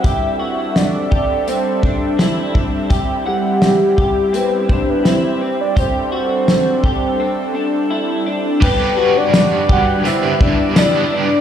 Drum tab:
CC |--------|--------|--------|x-------|
HH |x-x-x-x-|x-x-x-x-|x-x-----|--x-x-x-|
TB |--------|--------|--------|--x---x-|
SD |--o---o-|--o---o-|--o-----|--o---o-|
BD |o--o-o-o|o--o-o--|o--o----|o--o-o--|